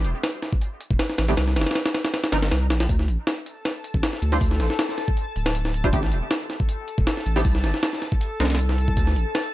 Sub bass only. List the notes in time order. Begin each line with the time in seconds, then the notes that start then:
0.04 E1
0.90 E1
1.18 A1
1.37 C2
1.57 G1
2.32 G1
2.51 C2
2.70 A#1
2.89 D2
3.08 A1
3.94 A1
4.22 D2
4.41 D2
4.60 A1
5.36 D1
5.93 A1
6.12 E1
6.98 E1
7.26 A1
7.45 C2
7.64 G1
8.40 C2
8.97 D2
9.16 A1